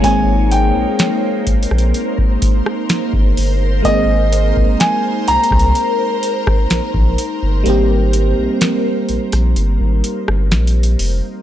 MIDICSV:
0, 0, Header, 1, 6, 480
1, 0, Start_track
1, 0, Tempo, 952381
1, 20, Time_signature, 4, 2, 24, 8
1, 5757, End_track
2, 0, Start_track
2, 0, Title_t, "Grand piano"
2, 0, Program_c, 0, 0
2, 19, Note_on_c, 0, 80, 106
2, 260, Note_on_c, 0, 79, 81
2, 267, Note_off_c, 0, 80, 0
2, 960, Note_off_c, 0, 79, 0
2, 1940, Note_on_c, 0, 75, 105
2, 2420, Note_on_c, 0, 80, 93
2, 2434, Note_off_c, 0, 75, 0
2, 2661, Note_on_c, 0, 82, 120
2, 2667, Note_off_c, 0, 80, 0
2, 5280, Note_off_c, 0, 82, 0
2, 5757, End_track
3, 0, Start_track
3, 0, Title_t, "Ambient pad"
3, 0, Program_c, 1, 92
3, 0, Note_on_c, 1, 58, 89
3, 0, Note_on_c, 1, 63, 80
3, 19, Note_on_c, 1, 70, 77
3, 19, Note_on_c, 1, 72, 98
3, 5757, Note_off_c, 1, 58, 0
3, 5757, Note_off_c, 1, 63, 0
3, 5757, Note_off_c, 1, 70, 0
3, 5757, Note_off_c, 1, 72, 0
3, 5757, End_track
4, 0, Start_track
4, 0, Title_t, "FM electric piano"
4, 0, Program_c, 2, 5
4, 0, Control_c, 2, 64, 127
4, 8, Note_on_c, 2, 56, 68
4, 18, Note_on_c, 2, 58, 63
4, 26, Control_c, 2, 64, 0
4, 28, Note_on_c, 2, 60, 62
4, 38, Note_on_c, 2, 68, 77
4, 116, Control_c, 2, 64, 127
4, 1914, Note_off_c, 2, 56, 0
4, 1919, Note_off_c, 2, 58, 0
4, 1924, Note_off_c, 2, 60, 0
4, 1927, Note_on_c, 2, 56, 66
4, 1929, Note_off_c, 2, 68, 0
4, 1937, Note_on_c, 2, 58, 60
4, 1947, Note_on_c, 2, 60, 58
4, 1957, Note_on_c, 2, 68, 76
4, 3833, Note_off_c, 2, 56, 0
4, 3838, Note_off_c, 2, 58, 0
4, 3843, Note_off_c, 2, 60, 0
4, 3848, Note_off_c, 2, 68, 0
4, 3848, Note_on_c, 2, 55, 80
4, 3858, Note_on_c, 2, 58, 73
4, 3868, Note_on_c, 2, 60, 75
4, 3878, Note_on_c, 2, 67, 87
4, 5754, Note_off_c, 2, 55, 0
4, 5757, Note_off_c, 2, 58, 0
4, 5757, Note_off_c, 2, 60, 0
4, 5757, Note_off_c, 2, 67, 0
4, 5757, End_track
5, 0, Start_track
5, 0, Title_t, "Sub bass"
5, 0, Program_c, 3, 38
5, 20, Note_on_c, 3, 32, 113
5, 360, Note_off_c, 3, 32, 0
5, 383, Note_on_c, 3, 34, 48
5, 430, Note_off_c, 3, 34, 0
5, 742, Note_on_c, 3, 34, 49
5, 789, Note_off_c, 3, 34, 0
5, 863, Note_on_c, 3, 34, 90
5, 970, Note_off_c, 3, 34, 0
5, 1580, Note_on_c, 3, 31, 87
5, 1688, Note_off_c, 3, 31, 0
5, 1703, Note_on_c, 3, 31, 93
5, 1921, Note_off_c, 3, 31, 0
5, 1940, Note_on_c, 3, 32, 106
5, 2280, Note_off_c, 3, 32, 0
5, 2305, Note_on_c, 3, 36, 46
5, 2352, Note_off_c, 3, 36, 0
5, 2663, Note_on_c, 3, 36, 49
5, 2710, Note_off_c, 3, 36, 0
5, 2779, Note_on_c, 3, 36, 95
5, 2887, Note_off_c, 3, 36, 0
5, 3383, Note_on_c, 3, 34, 49
5, 3430, Note_off_c, 3, 34, 0
5, 3501, Note_on_c, 3, 34, 99
5, 3609, Note_off_c, 3, 34, 0
5, 3743, Note_on_c, 3, 31, 87
5, 3850, Note_off_c, 3, 31, 0
5, 3863, Note_on_c, 3, 32, 112
5, 4201, Note_off_c, 3, 32, 0
5, 4223, Note_on_c, 3, 34, 48
5, 4270, Note_off_c, 3, 34, 0
5, 4583, Note_on_c, 3, 34, 47
5, 4630, Note_off_c, 3, 34, 0
5, 4703, Note_on_c, 3, 34, 90
5, 4810, Note_off_c, 3, 34, 0
5, 4823, Note_on_c, 3, 31, 106
5, 4930, Note_off_c, 3, 31, 0
5, 4943, Note_on_c, 3, 32, 91
5, 5050, Note_off_c, 3, 32, 0
5, 5183, Note_on_c, 3, 31, 95
5, 5303, Note_on_c, 3, 34, 98
5, 5310, Note_off_c, 3, 31, 0
5, 5521, Note_off_c, 3, 34, 0
5, 5543, Note_on_c, 3, 29, 90
5, 5650, Note_off_c, 3, 29, 0
5, 5757, End_track
6, 0, Start_track
6, 0, Title_t, "Drums"
6, 19, Note_on_c, 9, 36, 95
6, 19, Note_on_c, 9, 42, 66
6, 69, Note_off_c, 9, 36, 0
6, 70, Note_off_c, 9, 42, 0
6, 260, Note_on_c, 9, 42, 70
6, 310, Note_off_c, 9, 42, 0
6, 499, Note_on_c, 9, 42, 70
6, 503, Note_on_c, 9, 38, 117
6, 550, Note_off_c, 9, 42, 0
6, 553, Note_off_c, 9, 38, 0
6, 739, Note_on_c, 9, 42, 72
6, 741, Note_on_c, 9, 36, 82
6, 790, Note_off_c, 9, 42, 0
6, 791, Note_off_c, 9, 36, 0
6, 820, Note_on_c, 9, 42, 57
6, 863, Note_on_c, 9, 37, 68
6, 870, Note_off_c, 9, 42, 0
6, 899, Note_on_c, 9, 42, 44
6, 913, Note_off_c, 9, 37, 0
6, 950, Note_off_c, 9, 42, 0
6, 980, Note_on_c, 9, 42, 55
6, 1030, Note_off_c, 9, 42, 0
6, 1101, Note_on_c, 9, 36, 89
6, 1151, Note_off_c, 9, 36, 0
6, 1219, Note_on_c, 9, 42, 70
6, 1221, Note_on_c, 9, 36, 98
6, 1270, Note_off_c, 9, 42, 0
6, 1271, Note_off_c, 9, 36, 0
6, 1342, Note_on_c, 9, 37, 106
6, 1393, Note_off_c, 9, 37, 0
6, 1459, Note_on_c, 9, 42, 64
6, 1461, Note_on_c, 9, 38, 114
6, 1509, Note_off_c, 9, 42, 0
6, 1511, Note_off_c, 9, 38, 0
6, 1579, Note_on_c, 9, 36, 99
6, 1630, Note_off_c, 9, 36, 0
6, 1700, Note_on_c, 9, 46, 71
6, 1751, Note_off_c, 9, 46, 0
6, 1939, Note_on_c, 9, 36, 96
6, 1940, Note_on_c, 9, 42, 65
6, 1989, Note_off_c, 9, 36, 0
6, 1990, Note_off_c, 9, 42, 0
6, 2180, Note_on_c, 9, 42, 75
6, 2230, Note_off_c, 9, 42, 0
6, 2303, Note_on_c, 9, 36, 91
6, 2354, Note_off_c, 9, 36, 0
6, 2420, Note_on_c, 9, 42, 70
6, 2423, Note_on_c, 9, 38, 119
6, 2470, Note_off_c, 9, 42, 0
6, 2474, Note_off_c, 9, 38, 0
6, 2660, Note_on_c, 9, 42, 74
6, 2710, Note_off_c, 9, 42, 0
6, 2740, Note_on_c, 9, 42, 57
6, 2777, Note_on_c, 9, 36, 104
6, 2783, Note_on_c, 9, 37, 73
6, 2790, Note_off_c, 9, 42, 0
6, 2820, Note_on_c, 9, 42, 46
6, 2827, Note_off_c, 9, 36, 0
6, 2833, Note_off_c, 9, 37, 0
6, 2870, Note_off_c, 9, 42, 0
6, 2899, Note_on_c, 9, 42, 59
6, 2950, Note_off_c, 9, 42, 0
6, 3140, Note_on_c, 9, 42, 73
6, 3190, Note_off_c, 9, 42, 0
6, 3262, Note_on_c, 9, 36, 112
6, 3262, Note_on_c, 9, 37, 108
6, 3312, Note_off_c, 9, 36, 0
6, 3312, Note_off_c, 9, 37, 0
6, 3379, Note_on_c, 9, 42, 61
6, 3381, Note_on_c, 9, 38, 116
6, 3429, Note_off_c, 9, 42, 0
6, 3431, Note_off_c, 9, 38, 0
6, 3499, Note_on_c, 9, 36, 101
6, 3549, Note_off_c, 9, 36, 0
6, 3620, Note_on_c, 9, 42, 75
6, 3671, Note_off_c, 9, 42, 0
6, 3859, Note_on_c, 9, 42, 64
6, 3910, Note_off_c, 9, 42, 0
6, 4099, Note_on_c, 9, 42, 73
6, 4150, Note_off_c, 9, 42, 0
6, 4339, Note_on_c, 9, 42, 71
6, 4343, Note_on_c, 9, 38, 122
6, 4390, Note_off_c, 9, 42, 0
6, 4393, Note_off_c, 9, 38, 0
6, 4579, Note_on_c, 9, 42, 43
6, 4630, Note_off_c, 9, 42, 0
6, 4699, Note_on_c, 9, 42, 83
6, 4703, Note_on_c, 9, 37, 71
6, 4750, Note_off_c, 9, 42, 0
6, 4753, Note_off_c, 9, 37, 0
6, 4820, Note_on_c, 9, 42, 57
6, 4870, Note_off_c, 9, 42, 0
6, 5060, Note_on_c, 9, 42, 70
6, 5110, Note_off_c, 9, 42, 0
6, 5182, Note_on_c, 9, 37, 104
6, 5232, Note_off_c, 9, 37, 0
6, 5299, Note_on_c, 9, 42, 40
6, 5301, Note_on_c, 9, 38, 123
6, 5350, Note_off_c, 9, 42, 0
6, 5351, Note_off_c, 9, 38, 0
6, 5380, Note_on_c, 9, 42, 50
6, 5430, Note_off_c, 9, 42, 0
6, 5460, Note_on_c, 9, 42, 62
6, 5510, Note_off_c, 9, 42, 0
6, 5540, Note_on_c, 9, 46, 79
6, 5590, Note_off_c, 9, 46, 0
6, 5757, End_track
0, 0, End_of_file